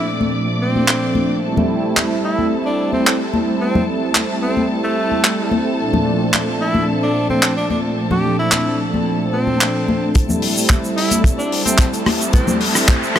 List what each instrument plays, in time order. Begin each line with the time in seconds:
Already playing: analog synth pad A#2 F3 A3 C4 D4, string section D5 D6
0.21 high conga
0.62 tenor saxophone C4
0.76 high conga
0.88 clap
1.15 high conga
1.42 analog synth pad G3 A3 C4 E4, string section A4 A5
1.57 high conga, low conga
1.97 clap, high conga
2.24 tenor saxophone E4
2.39 high conga
2.66 tenor saxophone D4
2.93 tenor saxophone C4, high conga
3.07 clap
3.34 high conga
3.61 tenor saxophone C4
3.75 high conga, low conga
4.15 clap, high conga
4.42 tenor saxophone C4
4.57 high conga
4.84 tenor saxophone A3
5.12 high conga
5.24 clap
5.51 high conga
5.78 analog synth pad A#2 F3 A3 C4 D4
5.93 high conga, low conga
6.34 clap, high conga
6.61 tenor saxophone E4
6.75 high conga
7.03 tenor saxophone D4
7.30 tenor saxophone C4, high conga
7.43 clap
7.57 tenor saxophone D4
7.70 tenor saxophone D4, high conga
8.11 tenor saxophone G4, high conga, low conga
8.39 tenor saxophone E4
8.52 clap, high conga
8.94 high conga
9.33 tenor saxophone C4
9.47 high conga
9.61 clap
9.88 high conga
10.15 analog synth pad G3 A3 C4 E4, string section A4 A5, kick, closed hi-hat, riser, shaker
10.29 high conga, low conga, shaker
10.42 open hi-hat
10.56 analog synth pad G3 A3 C4 E4, shaker
10.70 kick, clap, high conga, shaker
10.84 shaker
10.97 tenor saxophone E4, open hi-hat
11.11 closed hi-hat, high conga, shaker
11.24 kick, closed hi-hat, shaker
11.38 tenor saxophone D4, shaker
11.52 open hi-hat
11.65 tenor saxophone C4, closed hi-hat, high conga, shaker
11.78 kick, clap, closed hi-hat, shaker
11.94 closed hi-hat, shaker
12.06 cross-stick, open hi-hat, high conga
12.21 closed hi-hat, shaker
12.33 analog synth pad G3 A3 C4 E4, tenor saxophone C4, kick, closed hi-hat, shaker
12.47 high conga, low conga, shaker
12.61 open hi-hat
12.74 analog synth pad G3 A3 C4 E4, cross-stick, shaker
12.88 kick, clap, closed hi-hat, high conga, shaker
13.03 shaker
13.16 tenor saxophone C4, cross-stick, open hi-hat